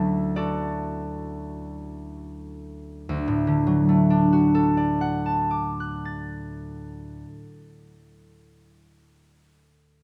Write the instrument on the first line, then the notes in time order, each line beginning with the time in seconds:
harp
Already playing: D2 F#3 A3 D4 A4 E5
0.36 F#4 A4 D5
3.09 D2
3.28 A2
3.47 D3
3.67 F#3
3.89 A3
4.10 D4
4.33 F#4
4.55 A4
4.77 D5
5.01 F#5
5.26 A5
5.51 D6
5.80 F#6
6.05 A6